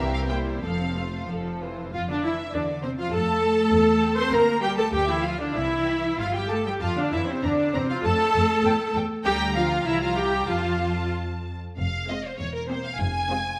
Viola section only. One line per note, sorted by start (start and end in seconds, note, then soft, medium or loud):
0.00 0.26 E3 soft
0.00 0.26 C4 soft
0.29 0.62 G3 soft
0.29 0.62 A#3 soft
0.62 0.92 F3 soft
0.62 0.92 C4 soft
0.95 1.28 A3 soft
1.28 1.59 F3 soft
1.61 1.93 E3 soft
1.93 2.07 F4 medium
2.10 2.24 D4 medium
2.24 2.32 E4 medium
2.54 2.62 D4 medium
2.83 2.89 C4 medium
2.99 3.13 F4 medium
3.13 4.15 A4 medium
4.17 4.32 C5 medium
4.31 4.61 A#4 medium
4.62 4.68 G4 medium
4.78 4.83 A4 medium
4.92 5.07 G4 medium
5.08 5.23 E4 medium
5.23 5.39 F4 medium
5.40 5.55 D4 medium
5.55 6.18 E4 medium
6.19 6.34 F4 medium
6.35 6.50 G4 medium
6.50 6.66 A4 medium
6.67 6.82 G4 medium
6.81 6.96 F4 medium
6.98 7.13 D4 medium
7.13 7.28 E4 medium
7.29 7.43 C4 medium
7.43 7.74 D4 medium
7.74 7.89 C4 medium
7.91 8.05 F4 medium
8.04 8.93 A4 medium
9.26 9.34 G4 loud
9.56 9.85 F4 medium
9.86 10.01 E4 medium
10.03 10.17 F4 medium
10.17 10.49 G4 medium
10.48 11.12 F4 medium
12.09 12.32 G#3 soft
12.09 12.32 C4 soft
12.69 12.91 A#3 soft
12.69 12.91 C4 soft
13.29 13.52 G#3 medium
13.29 13.52 C4 soft